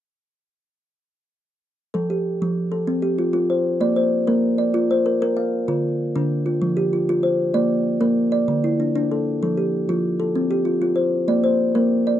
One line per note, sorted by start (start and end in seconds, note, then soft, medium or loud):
1.94 2.25 F3 medium
1.94 2.41 A4 medium
2.10 2.56 G4 medium
2.42 2.72 F3 medium
2.72 3.18 A4 medium
2.87 3.18 C4 medium
3.02 3.49 G4 medium
3.19 3.32 F4 medium
3.33 3.65 F4 medium
3.50 3.95 C5 medium
3.81 4.12 A#3 medium
3.81 4.28 D5 medium
3.96 4.43 C5 medium
4.27 4.59 A#3 medium
4.27 4.74 A#4 medium
4.58 5.05 D5 medium
4.74 5.05 F4 medium
4.91 5.37 C5 medium
5.06 5.21 A#4 medium
5.22 5.53 A#4 medium
5.37 5.83 F5 medium
5.68 5.99 D3 medium
5.68 6.15 F4 medium
6.16 6.46 D3 medium
6.16 6.62 D4 medium
6.46 6.77 F4 medium
6.62 6.93 F3 medium
6.77 7.24 G4 medium
6.93 7.08 F4 medium
7.09 7.40 F4 medium
7.23 7.70 C5 medium
7.54 7.86 A#3 medium
7.54 8.01 D5 medium
8.01 8.32 A#3 medium
8.01 8.48 A#4 medium
8.32 8.64 D5 medium
8.48 8.79 D3 medium
8.64 9.11 E4 medium
8.80 8.94 D4 medium
8.95 9.26 D4 medium
9.12 9.41 A4 medium
9.43 9.73 F3 medium
9.43 9.89 A4 medium
9.57 10.04 G4 medium
9.89 10.20 F3 medium
9.89 10.36 F4 medium
10.20 10.66 A4 medium
10.36 10.67 C4 medium
10.51 10.97 G4 medium
10.65 10.80 F4 medium
10.82 11.13 F4 medium
10.96 11.42 C5 medium
11.28 11.59 A#3 medium
11.28 11.75 D5 medium
11.44 11.91 C5 medium
11.75 12.06 A#3 medium
11.75 12.20 A#4 medium
12.07 12.20 D5 medium